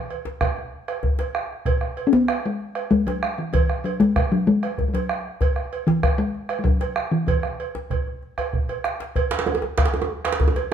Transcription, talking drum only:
0.00 0.38 E3 medium
2.07 2.14 C#4 medium
2.13 2.47 B3 medium
2.46 2.90 G#3 medium
2.91 3.08 G#3 medium
3.07 3.40 F#3 medium
3.38 3.52 E3 medium
3.53 3.86 E3 medium
3.84 3.99 F#3 medium
4.00 4.33 G#3 medium
4.32 4.49 F#3 medium
4.47 4.88 G#3 medium
4.88 4.95 G#3 medium
4.94 5.29 F#3 medium
5.87 6.20 E3 medium
6.18 6.59 G#3 loud
6.59 6.65 G#3 medium
6.64 7.13 F#3 medium
7.11 7.26 E3 medium
7.27 7.86 E3 medium

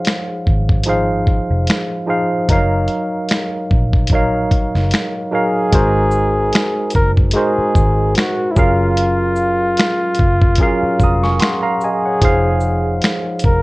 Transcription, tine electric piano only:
0.00 0.55 F3 medium
0.00 0.55 D#4 medium
0.00 0.56 G#4 medium
0.00 0.56 C5 medium
0.00 2.50 C#5 soft
0.00 0.57 F5 medium
0.00 2.51 F#5 soft
0.86 1.85 F3 medium
0.86 1.85 D#4 medium
0.86 1.86 G#4 medium
0.86 1.86 C5 medium
0.86 1.87 F5 medium
2.06 2.40 F3 medium
2.06 2.41 D#4 medium
2.06 2.41 G#4 medium
2.06 2.42 C5 medium
2.06 2.42 F5 medium
2.49 2.56 F3 medium
2.49 3.80 D#4 medium
2.49 3.80 A#4 medium
2.49 3.81 C#5 medium
2.49 3.81 F5 medium
2.55 3.82 F#3 medium
4.11 5.10 F#3 medium
4.11 5.10 D#4 medium
4.11 5.11 A#4 medium
4.11 5.11 C#5 medium
4.11 5.12 F5 medium
5.31 5.65 F#3 medium
5.31 5.66 D#4 medium
5.31 5.66 A#4 medium
5.31 5.67 C#5 medium
5.31 5.67 F5 medium
5.72 7.03 G#3 medium
5.72 7.03 D#4 medium
5.72 7.04 F#4 medium
5.72 7.04 A#4 medium
5.72 7.05 C5 medium
7.33 8.33 G#3 medium
7.33 8.33 D#4 medium
7.33 8.34 F#4 medium
7.33 8.34 A#4 medium
7.33 8.35 C5 medium
8.55 9.87 F#3 medium
8.55 9.87 C#4 medium
8.55 9.87 G#4 medium
8.55 9.88 A#4 medium
8.55 9.88 F5 medium
10.59 11.58 F#3 medium
10.59 11.59 C#4 medium
10.59 11.59 G#4 medium
10.59 11.59 A#4 medium
10.59 11.02 F5 medium
11.03 11.23 A#5 medium
11.03 11.23 D#6 medium
11.23 11.40 G#5 medium
11.23 11.40 C#6 medium
11.40 11.62 F#5 medium
11.40 11.62 C6 medium
11.63 11.80 F5 medium
11.63 11.80 A#5 medium
11.84 12.04 D#5 soft
11.84 12.04 G#5 medium
12.06 12.43 C#5 medium
12.06 12.43 F#5 medium
12.21 13.52 F3 medium
12.21 13.52 D#4 medium
12.21 13.53 G#4 medium
12.21 13.53 C5 medium
12.21 13.54 F5 medium

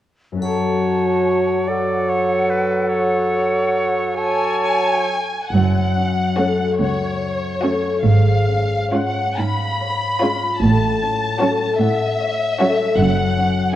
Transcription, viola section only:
6.38 6.69 A3 soft
6.38 6.69 C#4 soft
7.63 7.94 A3 soft
7.63 7.94 C#4 soft
8.93 9.26 G#3 soft
8.93 9.26 C#4 soft
10.22 10.52 G#3 soft
10.22 10.52 C#4 soft
11.41 11.70 F#3 soft
11.41 11.70 C#4 soft
12.60 12.88 F#3 soft
12.60 12.88 C#4 soft

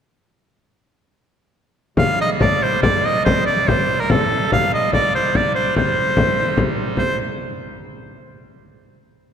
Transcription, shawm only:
1.98 2.18 F5 medium
2.21 2.30 D#5 medium
2.41 2.64 D5 medium
2.63 2.81 C5 medium
2.82 3.07 D5 medium
3.05 3.24 D#5 medium
3.25 3.45 C5 medium
3.46 3.69 D5 medium
3.68 4.02 C5 medium
4.00 4.12 A#4 medium
4.11 4.52 A4 medium
4.52 4.71 F5 medium
4.74 4.92 D#5 medium
4.93 5.12 D5 medium
5.15 5.37 C5 medium
5.36 5.55 D5 medium
5.55 5.75 C5 medium
5.77 6.75 C5 medium
6.98 7.17 C5 medium

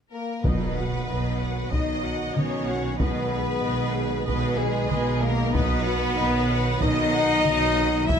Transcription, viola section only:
0.45 0.74 D#4 medium
0.45 0.74 D#5 soft
0.77 1.09 F#4 soft
0.77 1.09 F#5 soft
1.08 1.40 D#4 soft
1.08 1.40 D#5 soft
1.40 1.72 F#4 soft
1.40 1.72 F#5 soft
1.72 2.02 D#4 soft
1.72 2.01 D#5 medium
2.03 2.35 F#4 soft
2.03 2.35 F#5 soft
2.34 2.67 D#4 medium
2.34 2.67 D#5 medium
2.67 2.99 F#4 soft
2.67 2.99 F#5 soft
2.99 3.29 B4 medium
2.99 3.29 D#5 soft
3.30 3.63 G#4 medium
3.30 3.61 B4 medium
3.63 3.92 B4 medium
3.63 3.95 D#5 medium
3.93 4.26 G#4 medium
3.93 4.24 B4 medium
4.25 4.56 B4 medium
4.25 4.56 D#5 medium
4.57 4.90 G#4 medium
4.57 4.87 B4 medium
4.88 5.21 B4 medium
4.88 5.21 D#5 medium
5.21 5.54 B3 medium
5.21 5.54 G#4 medium
5.51 5.82 D#4 medium
5.51 5.82 D#5 medium
5.83 6.17 F#4 medium
5.83 6.17 F#5 medium
6.16 6.49 D#4 medium
6.16 6.49 D#5 medium
6.47 6.81 F#4 medium
6.47 6.81 F#5 medium
6.80 7.11 D#4 medium
6.80 7.11 D#5 medium
7.12 7.45 F#4 medium
7.12 7.45 F#5 medium
7.44 7.77 D#4 medium
7.44 7.77 D#5 medium
7.77 8.09 F#4 medium
7.77 8.09 F#5 medium
8.07 8.20 E4 medium
8.07 8.20 E5 medium

